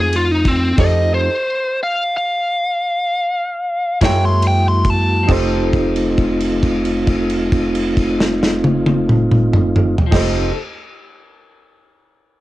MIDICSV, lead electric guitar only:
0, 0, Header, 1, 2, 480
1, 0, Start_track
1, 0, Tempo, 668896
1, 556, Time_signature, 12, 3, 24, 8
1, 1532, Tempo, 739827
1, 2492, Tempo, 805369
1, 2972, Tempo, 863309
1, 3452, Tempo, 895522
1, 7268, End_track
2, 0, Start_track
2, 0, Title_t, "Lead electric guitar"
2, 0, Program_c, 0, 29
2, 1, Note_on_c, 0, 68, 91
2, 99, Note_off_c, 0, 68, 0
2, 113, Note_on_c, 0, 65, 99
2, 224, Note_off_c, 0, 65, 0
2, 224, Note_on_c, 0, 63, 89
2, 328, Note_off_c, 0, 63, 0
2, 341, Note_on_c, 0, 60, 97
2, 560, Note_off_c, 0, 60, 0
2, 570, Note_on_c, 0, 75, 100
2, 794, Note_off_c, 0, 75, 0
2, 818, Note_on_c, 0, 72, 90
2, 1280, Note_off_c, 0, 72, 0
2, 1314, Note_on_c, 0, 77, 96
2, 1540, Note_off_c, 0, 77, 0
2, 1554, Note_on_c, 0, 77, 90
2, 2714, Note_off_c, 0, 77, 0
2, 2754, Note_on_c, 0, 79, 78
2, 2858, Note_off_c, 0, 79, 0
2, 2873, Note_on_c, 0, 84, 93
2, 2980, Note_off_c, 0, 84, 0
2, 3002, Note_on_c, 0, 79, 88
2, 3100, Note_off_c, 0, 79, 0
2, 3118, Note_on_c, 0, 84, 92
2, 3238, Note_off_c, 0, 84, 0
2, 3238, Note_on_c, 0, 81, 104
2, 3460, Note_off_c, 0, 81, 0
2, 7268, End_track
0, 0, End_of_file